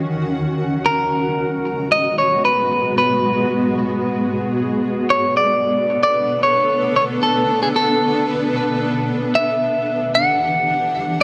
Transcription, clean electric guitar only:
0.86 A#4
1.92 D#5
2.18 C#5
2.45 B4
2.98 B4
5.10 C#5
5.37 D5
6.03 D5
6.43 C#5
6.96 C#5
7.23 A4
7.63 G#4
7.76 A4
9.35 E5
10.15 F#5

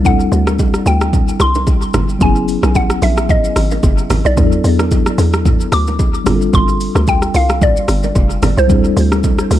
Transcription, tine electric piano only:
0.03 G3 C4 D4 E4
0.08 A4
2.19 F#3 B3 C#4 E4
2.24 G#4
4.35 F#3 B3 D4 E4
4.40 G#4
4.47 A4
6.24 G3 C4 D4 F4
6.29 G#4
6.36 A4
8.68 G3 C4 D4 E4
8.73 G#4
8.79 A4

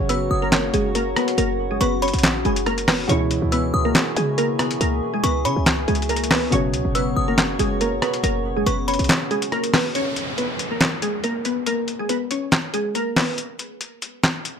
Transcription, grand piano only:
Already playing: C#3 F#3 C#4 F#4 C#5
3.07 B2 E3 G#3 C#4
3.12 E4
6.50 B2 C#3 F#3 F#4
6.54 C#5

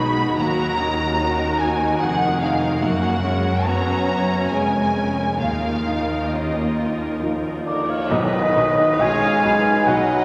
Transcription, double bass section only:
Already playing: B1
0.37 D#2
2.02 F1
2.82 F#1
4.51 F1
5.40 D#2
8.10 B1
8.55 B1
9.00 B1
9.43 B1
9.85 B1

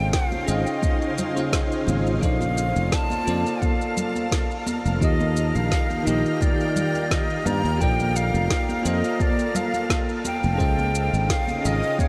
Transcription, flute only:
Already playing: G5
0.13 F5
0.48 D#5
2.24 F5
2.94 A5
3.63 F5
5.02 D#5
5.55 F5
6.00 F5
6.07 D#5
6.42 D5
7.11 D#5
7.46 A#5
7.81 G5
8.16 F5
8.79 F5
8.87 D#5
9.22 D5
9.56 F5
10.26 G5
11.31 F5
11.66 D#5
12.00 C#5

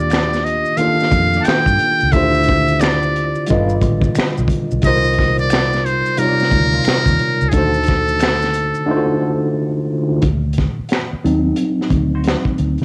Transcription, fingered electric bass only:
Already playing: D#2
1.12 F2
1.47 muted fingered electric bass stroke
1.66 G2
2.03 C#2
2.13 D2
3.51 G1
3.82 A1
4.17 muted fingered electric bass stroke
4.38 B1
4.72 B1
4.84 C2
6.52 D2
6.87 muted fingered electric bass stroke
7.06 D#2
7.42 C#2
7.53 D2
10.23 D2
10.79 muted fingered electric bass stroke
11.13 muted fingered electric bass stroke
11.25 D#2
11.91 D2
12.59 D2
12.81 D3

